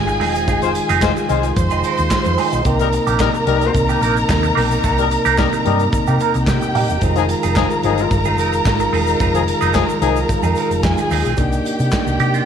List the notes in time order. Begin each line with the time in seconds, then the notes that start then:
Already playing: G#1 D#3 G#3 F4 G#4 G#5
0.07 muted clean electric guitar stroke, closed hi-hat, shaker
0.20 E1 C4 D#4 G#4, snare, open hi-hat
0.35 C4 D#4 G#4, closed hi-hat, shaker
0.47 F1 C4 D#4 G#4, kick, closed hi-hat, shaker
0.62 G#3 F4 C5, muted clean electric guitar stroke, closed hi-hat, shaker
0.75 muted clean electric guitar stroke, closed hi-hat, shaker
0.89 F1 C4 D#4 G#4, closed hi-hat, shaker
1.01 G#3 F4 C5, muted clean electric guitar stroke, kick, snare, clap, shaker
1.17 muted clean electric guitar stroke, closed hi-hat, shaker
1.29 C2 G#3 F4 C5, closed hi-hat, shaker
1.43 muted clean electric guitar stroke, closed hi-hat, shaker
1.56 F2 C5 C6, muted clean electric guitar stroke, kick, closed hi-hat, shaker
1.70 F1 C4 D#4 G#4, closed hi-hat, shaker
1.83 C4 D#4 A#4, closed hi-hat, shaker
1.97 D#2, muted clean electric guitar stroke, closed hi-hat, shaker
2.11 muted clean electric guitar stroke, kick, snare, clap, shaker
2.24 F2, muted clean electric guitar stroke, closed hi-hat, shaker
2.38 C4 D#4 G#4, snare, open hi-hat, shaker
2.52 B1 C4 D#4 G#4, closed hi-hat, shaker
2.64 C2 C3 A#3 D#4 G4 A#4 A#5, kick, closed hi-hat, shaker
2.79 G3 D#4 A#4, muted clean electric guitar stroke, closed hi-hat, shaker
2.93 muted clean electric guitar stroke, closed hi-hat, shaker
3.07 A#1 A#3 D#4 G4, closed hi-hat, shaker
3.19 G3 D#4 A#4, muted clean electric guitar stroke, kick, snare, clap, shaker
3.34 muted clean electric guitar stroke, closed hi-hat, shaker
3.47 C2 G3 D#4 A#4, closed hi-hat
3.61 muted clean electric guitar stroke, closed hi-hat, shaker
3.74 C2, muted clean electric guitar stroke, kick, closed hi-hat, shaker
3.89 A#3 D#4 G4, closed hi-hat, shaker
4.01 A#1 A#3 D#4 A#4, closed hi-hat, shaker
4.16 muted clean electric guitar stroke, closed hi-hat, shaker
4.29 D#2, muted clean electric guitar stroke, kick, snare, clap, shaker
4.43 muted clean electric guitar stroke, closed hi-hat, shaker
4.55 B1 A#3 D#4 G4, snare, open hi-hat
4.70 A#3 D#4 G4, closed hi-hat, shaker
4.83 C2 A#3 D#4 G4, kick, closed hi-hat, shaker
4.98 G3 D#4 A#4, muted clean electric guitar stroke, closed hi-hat, shaker
5.11 muted clean electric guitar stroke, closed hi-hat, shaker
5.25 C2 A#3 D#4 G4, closed hi-hat, shaker
5.37 G3 D#4 A#4, muted clean electric guitar stroke, kick, snare, clap, shaker
5.53 muted clean electric guitar stroke, closed hi-hat, shaker
5.65 G2 G3 D#4 A#4, closed hi-hat
5.80 muted clean electric guitar stroke, closed hi-hat, shaker
5.92 muted clean electric guitar stroke, muted fingered electric bass stroke, kick, closed hi-hat, shaker
6.07 C3 A#3 D#4 G4, closed hi-hat, shaker
6.20 A#3 D#4 A#4, closed hi-hat, shaker
6.34 C2, muted clean electric guitar stroke, closed hi-hat, shaker
6.47 C3 G4 G5, muted clean electric guitar stroke, kick, snare, clap, shaker
6.61 muted clean electric guitar stroke, closed hi-hat, shaker
6.75 A#2 A#3 D#4 G4, snare, open hi-hat
6.89 E1 A#3 D#4 G4, closed hi-hat, shaker
7.01 F1 D#3 G#3 C4 D#4 F4 G#4 A#4 A#5, kick, closed hi-hat, shaker
7.16 F3 D#4 G#4, muted clean electric guitar stroke, closed hi-hat, shaker
7.29 muted clean electric guitar stroke, closed hi-hat, shaker
7.43 F1 C4 D#4 G#4, closed hi-hat, shaker
7.55 F3 D#4 G#4, kick, snare, clap, shaker
7.70 muted clean electric guitar stroke, closed hi-hat, shaker
7.83 G1 F3 D#4 G#4, closed hi-hat
7.98 muted clean electric guitar stroke, closed hi-hat, shaker
8.11 G1, muted clean electric guitar stroke, kick, closed hi-hat, shaker
8.25 C4 D#4 G#4, closed hi-hat, shaker
8.38 F1 C4 D#4 A#4, closed hi-hat, shaker
8.53 muted clean electric guitar stroke, closed hi-hat, shaker
8.65 G#1, muted clean electric guitar stroke, kick, snare, clap, shaker
8.80 muted clean electric guitar stroke, closed hi-hat, shaker
8.93 E1 C4 D#4 G#4, open hi-hat
9.07 C4 D#4 G#4, closed hi-hat, shaker
9.20 F1 C4 D#4 G#4, kick, closed hi-hat, shaker
9.34 F3 D#4 G#4, muted clean electric guitar stroke, closed hi-hat, shaker
9.47 muted clean electric guitar stroke, closed hi-hat, shaker
9.61 F1 C4 D#4 G#4, closed hi-hat, shaker
9.74 F3 D#4 G#4, kick, snare, clap, shaker
9.89 muted clean electric guitar stroke, closed hi-hat, shaker
10.01 C2 F3 D#4 G#4, closed hi-hat, shaker
10.16 muted clean electric guitar stroke, closed hi-hat, shaker
10.29 muted clean electric guitar stroke, muted fingered electric bass stroke, kick, closed hi-hat, shaker
10.43 F2 C4 D#4 G#4, closed hi-hat, shaker
10.55 C4 D#4 A#4, closed hi-hat, shaker
10.71 F1, muted clean electric guitar stroke, closed hi-hat, shaker
10.83 F2 G#4 G#5, muted clean electric guitar stroke, kick, snare, clap, shaker
10.97 muted clean electric guitar stroke, closed hi-hat, shaker
11.10 D#2 C4 D#4 G#4, open hi-hat, shaker
11.25 B1 C4 D#4 G#4, closed hi-hat, shaker
11.37 C2 A#3 D4 D#4 G4 G5, kick, closed hi-hat, shaker
11.52 closed hi-hat, shaker
11.65 closed hi-hat, shaker
11.79 C3, closed hi-hat, shaker
11.91 kick, snare, clap, shaker
12.07 C2, closed hi-hat, shaker
12.20 C3 G4, closed hi-hat
12.34 F4, closed hi-hat, shaker